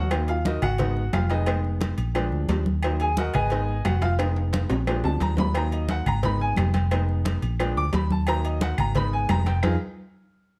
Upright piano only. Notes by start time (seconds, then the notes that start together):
0.11 F#3 A#3 D#4
0.29 F4 F5
0.46 D#4 F#4 A#4 D#5
0.63 F#4 F#5
0.79 G#3 B3 D#4
1.14 F4 F5
1.30 D#4 G#4 B4 D#5
1.47 G#3 B3 D#4
2.14 F3 G#3 D4
2.84 F#3 A#3 D#4
3.01 G#4 G#5
3.18 F#4 A#4 D#5 F#5
3.34 G#4 B4 D#5 G#5
3.51 G#3 B3 D#4
3.86 F#4 F#5
4.02 F4 F5
4.19 G#3 B3 D#4
4.88 F3 G#3 D4
5.05 A5
5.22 A#5
5.40 B5
5.56 F#3 A#3 D#4 A#5
5.73 D#5
5.90 F#5
6.08 A#5
6.25 G#3 B3 D#4 B5
6.41 G#5
6.92 G#3 B3 D#4
7.60 F3 G#3 D4
7.77 D6
7.95 B5
8.12 A5
8.28 F#3 A#3 D#4 A#5
8.45 D#5
8.62 F#5
8.79 A#5
8.96 G#3 B3 D#4 B5
9.13 G#5
9.30 A#5
9.46 G5
9.63 D#4 F4 G#4